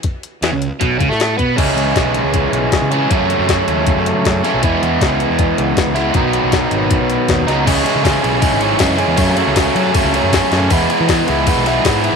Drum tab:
CC |----------------|x---------------|----------------|----------------|
RD |----------------|----------------|----------------|----------------|
HH |x-x-x-x-x-x-x-x-|x-x-x-x-x-x-x-x-|x-x-x-x-x-x-x-x-|x-x-x-x-x-x-x-x-|
SD |----o------oo---|----o-------o---|----o-------o-o-|----o-------o-o-|
BD |o-------o-o---o-|o---o---o---o---|o---o---o---o---|o---o---o---o---|

CC |----------------|x---------------|----------------|----------------|
RD |----------------|x-x-x-x-x-x-x-x-|x-x-x-x-x-x-x-x-|x-x-x-x-x-x-x-x-|
HH |x-x-x-x-x-x-x-x-|----------------|----------------|----------------|
SD |----o-------o-o-|----o-------o---|----o-------o-o-|----o-----o-o---|
BD |o---o---o---o---|o---o---o---o---|o---o---o---o---|o---o---o---o---|